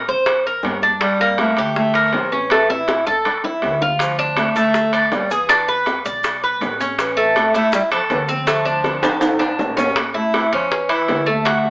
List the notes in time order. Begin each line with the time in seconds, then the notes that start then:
0.08 F2 C5, high bongo
0.26 high bongo, high timbale
0.47 A#4
0.63 G2, high bongo, low bongo, high timbale, low timbale
0.82 D4, high bongo
1.01 G3, high bongo, high timbale
1.20 A#3, high bongo
1.38 A3, high bongo, high timbale, low timbale
1.56 D2 G4, high bongo, high timbale
1.76 A3, high bongo
1.94 A#4, high timbale
2.13 A1 F3, high bongo, low bongo, high timbale, low timbale
2.32 E3 C#4, high bongo
2.50 A3, high bongo, high timbale
2.70 E4, high bongo
2.88 high bongo, high timbale, low timbale
3.07 E2 A4, low bongo
3.25 low bongo, high timbale
3.44 E4, low bongo
3.62 D2, high timbale, low timbale
3.82 F4, low bongo
3.99 F3, high bongo, high timbale, maracas
4.19 D4, high bongo, maracas
4.37 A3, high bongo, high timbale, low timbale, maracas
4.55 D2 A3 A4, high bongo, high timbale, maracas
4.74 high bongo, maracas
4.93 D5, high timbale, maracas
5.12 E2 G3, high bongo, low bongo, high timbale, low timbale, maracas
5.31 E3 G#4, high bongo, maracas
5.49 D4, high bongo, high timbale, maracas
5.68 B4, high bongo, maracas
5.86 high bongo, high timbale, low timbale, maracas
6.05 B1 D5, high bongo, maracas
6.24 high bongo, high timbale, maracas
6.43 B4, maracas
6.61 A1, high bongo, low bongo, high timbale, low timbale, maracas
6.80 C#4, high bongo, maracas
6.99 E3, high bongo, high timbale, maracas
7.17 A3, high bongo, maracas
7.36 A3, high bongo, high timbale, low timbale, maracas
7.54 E2 A3 E4, high bongo, high timbale, maracas
7.72 G3, high bongo, maracas
7.91 F3 A4, high timbale, maracas
8.10 D2 E3, high bongo, low bongo, high timbale, low timbale, maracas
8.28 F3 C4, high bongo, maracas
8.47 A3, high bongo, high timbale, maracas
8.65 D4, high bongo, maracas
8.84 high bongo, high timbale, low timbale, maracas
9.02 A1 A4, high bongo, high timbale, maracas
9.21 low bongo, high timbale, maracas
9.39 D4, high timbale, maracas
9.59 A1, low bongo, low timbale, maracas
9.77 C#4, low bongo, low timbale, maracas
9.96 high bongo, high timbale
10.14 A3 E4, high bongo
10.34 high bongo, high timbale, low timbale
10.52 E2 F3 C#4, high bongo, high timbale
10.72 E3, high bongo
10.89 E3 E4, high timbale
11.08 D2, high bongo, low bongo, high timbale, low timbale
11.26 A3, high bongo
11.45 F#4, high bongo, high timbale
11.65 high bongo